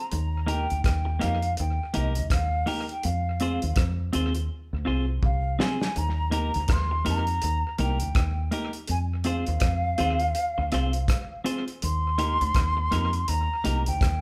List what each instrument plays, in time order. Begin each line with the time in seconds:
Already playing: flute A#5
0.12 fingered electric bass D#2, closed hi-hat
0.47 clean electric guitar A#3 D#4 G4 A#4, flute G5, closed hi-hat
0.70 fingered electric bass D2, closed hi-hat
0.84 fingered electric bass D#2, flute G5, kick, cross-stick, closed hi-hat
1.05 muted clean electric guitar stroke
1.19 fingered electric bass F2, clean electric guitar A#3 D#4 G4 A#4, flute F5, cross-stick, closed hi-hat
1.42 closed hi-hat
1.57 fingered electric bass D#2, flute G5, closed hi-hat
1.94 fingered electric bass C2, clean electric guitar A#3 D#4 G4 A#4, flute D#5, closed hi-hat
2.15 fingered electric bass D2, muted clean electric guitar stroke, closed hi-hat
2.30 fingered electric bass D#2, flute F5, kick, cross-stick, closed hi-hat
2.66 clean electric guitar A#3 D#4 G4 A#4, flute G5, open hi-hat
2.89 flute G5, closed hi-hat
3.03 fingered electric bass F2, flute F5, closed hi-hat
3.40 clean electric guitar C4 F4 G#4 C5, closed hi-hat
3.62 fingered electric bass D#2, closed hi-hat
3.76 fingered electric bass F2, kick, cross-stick, closed hi-hat
4.13 fingered electric bass D#2, clean electric guitar C4 F4 G#4 C5, closed hi-hat
4.35 muted clean electric guitar stroke, closed hi-hat
4.73 fingered electric bass D2
4.85 fingered electric bass C2, clean electric guitar C4 F4 G#4 C5
5.23 fingered electric bass C2, flute F5, kick
5.59 clean electric guitar C4 F4 G#4 C5, flute G#5, snare
5.81 snare
5.96 fingered electric bass D#2, flute A#5, closed hi-hat
6.31 clean electric guitar A#3 D#4 G4 A#4, flute A#5, closed hi-hat
6.54 fingered electric bass D2, closed hi-hat
6.68 fingered electric bass D#2, kick, cross-stick, closed hi-hat
6.72 flute C6
6.91 muted clean electric guitar stroke
7.05 fingered electric bass F2, clean electric guitar A#3 D#4 G4 A#4, closed hi-hat
7.09 flute A#5
7.27 closed hi-hat
7.42 fingered electric bass D#2, closed hi-hat
7.78 fingered electric bass C2, clean electric guitar A#3 D#4 G4 A#4, closed hi-hat
7.83 flute G5
8.00 fingered electric bass D2, closed hi-hat
8.15 fingered electric bass D#2, kick, cross-stick, closed hi-hat
8.51 clean electric guitar A#3 D#4 G4 A#4, closed hi-hat
8.73 closed hi-hat
8.88 fingered electric bass F2, flute G#5, closed hi-hat
9.24 clean electric guitar C4 F4 G#4 C5, flute F5, closed hi-hat
9.47 fingered electric bass D#2, closed hi-hat
9.60 fingered electric bass F2, kick, cross-stick, closed hi-hat
9.98 fingered electric bass D#2, clean electric guitar C4 F4 G#4 C5, closed hi-hat
10.20 muted clean electric guitar stroke, closed hi-hat
10.35 closed hi-hat
10.58 fingered electric bass D2, muted clean electric guitar stroke
10.72 fingered electric bass C2, clean electric guitar C4 F4 G#4 C5, cross-stick, closed hi-hat
10.93 closed hi-hat
11.08 kick, cross-stick, closed hi-hat
11.44 clean electric guitar C4 F4 G#4 C5, closed hi-hat
11.68 closed hi-hat
11.82 fingered electric bass D#2, flute C6, closed hi-hat
12.18 clean electric guitar A#3 D#4 G4 A#4, closed hi-hat
12.41 fingered electric bass D2, closed hi-hat
12.55 fingered electric bass D#2, kick, cross-stick, closed hi-hat
12.77 muted clean electric guitar stroke
12.91 fingered electric bass F2, clean electric guitar A#3 D#4 G4 A#4, cross-stick, closed hi-hat
13.13 closed hi-hat
13.28 fingered electric bass D#2, flute A#5, closed hi-hat
13.64 fingered electric bass C2, clean electric guitar A#3 D#4 G4 A#4, closed hi-hat
13.86 fingered electric bass D2, flute G5, muted clean electric guitar stroke, closed hi-hat
14.01 fingered electric bass D#2, kick, cross-stick, closed hi-hat